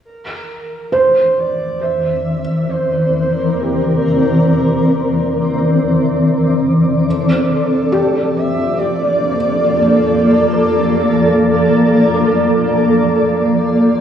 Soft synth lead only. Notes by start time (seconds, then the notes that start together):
0.05 A#4
0.95 C5
1.39 D5
1.82 E5
2.70 C5
3.60 G4
7.08 A4
8.37 E5
8.78 D5
10.53 A4